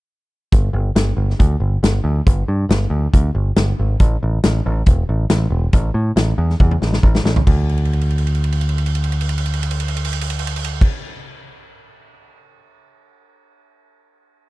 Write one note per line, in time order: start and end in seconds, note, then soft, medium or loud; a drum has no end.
0.52 0.68 G1 medium
0.52 kick loud
0.52 closed hi-hat medium
0.73 0.89 G1 medium
0.95 1.11 G1 medium
0.95 snare loud
0.95 closed hi-hat medium
1.17 1.33 G1 medium
1.30 snare soft
1.39 1.55 D2 medium
1.39 kick loud
1.39 closed hi-hat medium
1.60 1.76 G1 medium
1.83 1.99 G1 medium
1.83 snare loud
1.83 closed hi-hat medium
2.04 2.20 D2 medium
2.27 2.42 G1 medium
2.27 kick loud
2.27 closed hi-hat medium
2.48 2.64 G2 medium
2.69 2.85 G1 loud
2.69 snare loud
2.69 closed hi-hat medium
2.90 3.06 D2 medium
3.14 3.29 D2 medium
3.14 kick medium
3.14 closed hi-hat medium
3.35 3.51 G1 medium
3.56 3.72 G1 medium
3.56 snare loud
3.56 closed hi-hat medium
3.79 3.95 G#1 medium
4.00 4.16 A1 medium
4.00 kick loud
4.00 closed hi-hat medium
4.23 4.38 A1 medium
4.43 4.60 A1 loud
4.43 snare loud
4.43 closed hi-hat medium
4.66 4.82 A1 medium
4.86 5.03 E1 loud
4.86 kick loud
4.86 closed hi-hat medium
5.09 5.25 A1 medium
5.30 5.46 A1 medium
5.30 snare loud
5.30 closed hi-hat medium
5.50 5.67 E1 medium
5.73 5.89 A1 medium
5.73 kick loud
5.73 closed hi-hat medium
5.94 6.10 A2 medium
6.16 6.32 A1 medium
6.16 snare loud
6.16 closed hi-hat medium
6.38 6.54 E2 medium
6.50 snare soft
6.60 6.76 E2 medium
6.60 kick loud
6.60 high tom medium
6.71 high tom medium
6.82 6.98 A1 medium
6.82 snare medium
6.93 snare medium
7.03 7.19 A1 loud
7.03 kick medium
7.15 snare medium
7.24 7.40 A1 medium
7.24 snare medium
7.36 floor tom medium
7.47 10.86 D2 medium
7.47 kick loud
7.47 crash medium
7.69 crash soft
7.78 ride soft
7.85 crash soft
7.93 ride soft
8.01 crash medium
8.10 ride medium
8.18 crash medium
8.27 ride medium
8.35 crash medium
8.44 ride medium
8.52 crash medium
8.61 ride medium
8.69 crash medium
8.78 ride medium
8.86 crash medium
8.95 ride medium
9.04 crash medium
9.12 ride medium
9.21 crash medium
9.29 ride medium
9.38 crash medium
9.46 ride medium
9.53 crash medium
9.63 ride medium
9.71 crash medium
9.80 ride medium
9.88 crash medium
9.97 ride medium
10.05 crash medium
10.13 ride medium
10.21 crash medium
10.30 ride medium
10.39 crash medium
10.47 ride medium
10.56 crash medium
10.64 ride loud
10.81 kick loud
10.81 crash medium